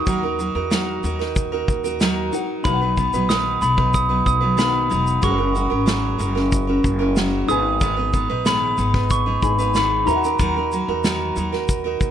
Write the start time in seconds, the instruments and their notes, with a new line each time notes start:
Already playing: felt piano D#4 F#4 A#4 F#5, glockenspiel D#6
0.07 upright bass D#2, steel-string acoustic guitar D#3 F#3 D#4 F#4 A#4, kick, shaker
0.23 steel-string acoustic guitar D#4 F#4 A#4
0.39 steel-string acoustic guitar F#3 D#4 F#4 A#4, shaker
0.55 upright bass E2, steel-string acoustic guitar D#4 F#4 A#4
0.70 steel-string acoustic guitar D#3 F#3 D#4 F#4 A#4, snare, shaker
1.03 upright bass D#2, steel-string acoustic guitar F#3 D#4 F#4 A#4, shaker
1.19 steel-string acoustic guitar D#4 F#4 A#4, snare
1.36 kick, shaker
1.52 steel-string acoustic guitar D#4 F#4 A#4
1.68 upright bass D#2, kick, shaker
1.84 steel-string acoustic guitar D#4 F#4 A#4, shaker
2.00 steel-string acoustic guitar D#3 F#3 D#4 F#4 A#4, snare, shaker
2.32 steel-string acoustic guitar F#3 D#4 F#4 A#4, felt piano D#4 F#4 A#4 F#5, shaker
2.63 upright bass B1, steel-string acoustic guitar B2 D#3 F#3 B3 D#4 B4, felt piano D#4 F#4 B4 F5, glockenspiel B5, kick, shaker
2.73 felt piano F#5
2.81 steel-string acoustic guitar F#3 B3 D#4 B4
2.97 steel-string acoustic guitar F#3 B3 D#4 B4, kick, shaker
3.13 upright bass A#1, steel-string acoustic guitar F#3 B3 D#4 B4, shaker
3.29 steel-string acoustic guitar D#3 F#3 B3 D#4 B4, glockenspiel D#6, snare, shaker
3.61 upright bass B1, steel-string acoustic guitar F#3 B3 D#4 B4, glockenspiel B5, shaker
3.77 steel-string acoustic guitar F#3 B3 D#4 B4, kick
3.94 glockenspiel D#6, kick, shaker
4.09 steel-string acoustic guitar F#3 B3 D#4 B4
4.26 upright bass B1, glockenspiel D#6, kick, shaker
4.40 steel-string acoustic guitar F#3 B3 D#4 B4
4.57 steel-string acoustic guitar B2 D#3 F#3 B3 D#4 B4, felt piano D#4 F#4 B4 F5, glockenspiel B5, snare, shaker
4.66 felt piano F#5
4.90 upright bass E1, steel-string acoustic guitar F#3 B3 D#4 B4, shaker
5.07 shaker
5.21 upright bass F#1, steel-string acoustic guitar F#3 G#3 C#4 F#4 A#4, felt piano C#4 G#4 A4, glockenspiel C#6, kick, shaker
5.25 felt piano F#5
5.31 felt piano A#4
5.38 steel-string acoustic guitar C#4 F#4 A#4
5.54 steel-string acoustic guitar G#3 C#4 F#4 A#4, shaker
5.70 upright bass G#1, steel-string acoustic guitar C#4 F#4 A#4
5.86 steel-string acoustic guitar F#3 G#3 C#4 F#4 A#4, snare, shaker
6.18 upright bass F#1, steel-string acoustic guitar G#3 C#4 F#4 A#4, shaker
6.35 steel-string acoustic guitar C#4 F#4 A#4, snare
6.52 kick, shaker
6.67 steel-string acoustic guitar C#4 F#4 A#4
6.84 upright bass F#1, kick, shaker
6.99 steel-string acoustic guitar C#4 F#4 A#4
7.16 steel-string acoustic guitar F#3 G#3 C#4 F#4 A#4, snare, shaker
7.47 upright bass G#1, steel-string acoustic guitar G#3 B3 D#4 B4, felt piano D#4 G#4 B4, glockenspiel D#6, shaker
7.51 felt piano G#5
7.81 steel-string acoustic guitar G#2 D#3 G#3 B3 D#4 B4, kick, shaker
7.97 steel-string acoustic guitar G#3 B3 D#4 B4
8.13 steel-string acoustic guitar G#3 B3 D#4 B4, kick, shaker
8.29 upright bass A#1, steel-string acoustic guitar G#3 B3 D#4 B4
8.45 steel-string acoustic guitar G#2 D#3 G#3 B3 D#4 B4, glockenspiel B5, snare, shaker
8.78 upright bass G#1, steel-string acoustic guitar G#3 B3 D#4 B4, shaker
8.94 steel-string acoustic guitar G#3 B3 D#4 B4, kick, snare
9.10 glockenspiel C#6, kick, shaker
9.26 steel-string acoustic guitar G#3 B3 D#4 B4
9.42 upright bass G#1, felt piano D#4 G#4 B4 G#5, glockenspiel B5, kick, shaker
9.59 steel-string acoustic guitar G#3 B3 D#4 B4, shaker
9.74 steel-string acoustic guitar G#2 D#3 G#3 B3 D#4 B4, glockenspiel B5, snare, shaker
10.05 upright bass D#2, steel-string acoustic guitar F#3 D#4 F#4, felt piano D#4 F#4 A#4, glockenspiel A#5, shaker
10.10 steel-string acoustic guitar A#4, felt piano E5
10.16 felt piano F#5
10.24 steel-string acoustic guitar D#4 F#4 A#4, shaker
10.39 upright bass D#2, steel-string acoustic guitar D#3 F#3 D#4 F#4 A#4, kick, shaker
10.56 steel-string acoustic guitar D#4 F#4 A#4
10.72 steel-string acoustic guitar F#3 D#4 F#4 A#4, shaker
10.88 upright bass E2, steel-string acoustic guitar D#4 F#4 A#4
11.04 steel-string acoustic guitar D#3 F#3 D#4 F#4 A#4, snare, shaker
11.36 upright bass D#2, steel-string acoustic guitar F#3 D#4 F#4 A#4, shaker
11.52 steel-string acoustic guitar D#4 F#4 A#4, snare
11.69 kick, shaker
11.84 steel-string acoustic guitar D#4 F#4 A#4
12.01 upright bass D#2, kick, shaker